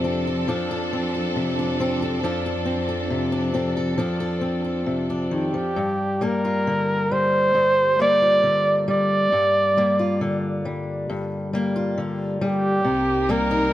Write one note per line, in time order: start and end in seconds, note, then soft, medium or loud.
0.00 5.72 F2 medium
0.00 0.47 C3 medium
0.00 0.47 F3 medium
0.00 5.72 F3 medium
0.00 0.92 C4 soft
0.00 0.48 D4 medium
0.00 5.72 D4 medium
0.00 5.72 A4 medium
0.05 0.27 A4 medium
0.27 0.49 A4 medium
0.48 2.23 F3 medium
0.48 1.59 D4 medium
0.48 0.70 A4 medium
0.71 1.13 A4 medium
0.93 1.79 C4 medium
1.15 1.80 A4 soft
1.36 2.23 C3 medium
1.59 2.24 D4 medium
1.80 2.18 C4 medium
1.80 2.01 A4 medium
2.02 2.18 A4 medium
2.23 3.96 F3 medium
2.23 3.31 D4 medium
2.23 2.45 A4 medium
2.46 2.87 A4 medium
2.65 3.53 C4 medium
2.89 3.53 A4 medium
3.10 3.98 C3 medium
3.32 3.97 D4 medium
3.54 4.40 C4 medium
3.54 3.76 A4 medium
3.77 3.98 A4 medium
3.98 5.53 F3 medium
3.98 5.09 D4 medium
3.98 4.19 A4 medium
4.20 4.63 A4 medium
4.41 5.70 C4 medium
4.64 5.71 A4 medium
4.86 5.31 C3 medium
5.10 6.44 D4 medium
5.31 5.54 D#3 medium
5.31 6.25 G4 medium
5.54 5.76 F3 medium
5.76 7.54 G2 medium
6.21 7.11 G3 medium
6.21 7.99 A#3 medium
6.21 7.14 A#4 medium
6.45 8.21 F4 medium
6.67 8.42 D3 medium
7.11 7.99 G3 medium
7.11 8.00 C5 loud
7.55 9.31 G2 medium
7.99 8.87 G3 medium
7.99 9.78 A#3 medium
7.99 8.85 D5 loud
8.22 9.27 F4 soft
8.43 9.27 D3 medium
8.88 9.77 G3 medium
8.88 10.62 D5 loud
9.32 11.08 G2 medium
9.77 10.65 G3 medium
9.77 11.53 A#3 medium
9.99 11.75 F4 medium
10.21 11.96 D3 medium
10.65 11.52 G3 medium
11.10 12.84 G2 medium
11.53 12.40 G3 medium
11.53 13.28 A#3 medium
11.76 12.79 F4 medium
11.98 12.79 D3 medium
12.41 12.79 G3 medium
12.41 13.32 G4 medium
12.84 13.73 C2 medium
12.84 13.73 C3 medium
12.84 13.72 C3 medium
12.84 13.73 D#4 medium
12.84 13.73 A#4 medium
13.29 13.73 G3 medium
13.29 13.73 A#3 medium
13.29 13.73 A#4 loud
13.51 13.73 D#4 medium